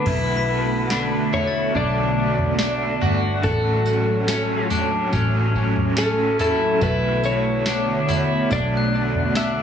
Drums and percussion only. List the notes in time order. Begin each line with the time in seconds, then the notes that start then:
0.06 kick, floor tom, crash
0.90 snare
1.33 floor tom
1.75 kick, floor tom
2.38 floor tom
2.59 snare
3.01 floor tom
3.43 kick, floor tom, tambourine
3.86 tambourine
4.28 snare, tambourine
4.70 floor tom, tambourine
5.13 kick, floor tom, tambourine
5.55 kick
5.76 floor tom
5.97 snare, tambourine
6.39 floor tom, tambourine
6.81 kick, floor tom, tambourine
7.24 tambourine
7.66 snare, tambourine
8.09 floor tom, tambourine
8.51 kick, floor tom, tambourine
9.15 floor tom
9.35 snare, tambourine